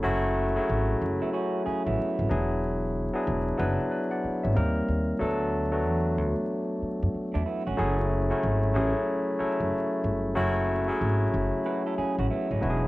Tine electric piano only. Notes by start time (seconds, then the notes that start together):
Already playing: F#3 A3 C#4 E4 F#4 A4
0.02 F#3 A3 C#4 E4 F#4
0.55 F#3 A3 C#4 E4 G#4
2.29 F#3 B3 D4 E4 G#4
3.14 F#3 B3 D4 E4 G#4
3.58 F#3 B3 D4 E4 B4
3.91 B4 D5
4.11 D5 F#5
4.43 C#5 E5
4.55 G3 A#3 C4 D#4 A#4
5.19 F#3 A3 B3 D4 A4
5.72 F#3 A3 B3 D4 F#4
7.77 F#3 A3 C#4 E4 G#4
8.30 F#3 A3 C#4 E4 F#4
8.74 F#3 A3 C#4 E4 G#4
9.39 F#3 A3 C#4 E4 A4
10.35 F#3 A3 C#4 E4 F#4
10.88 F#3 A3 C#4 E4 G#4
12.61 F#3 B3 D4 E4 F#4
12.70 G#4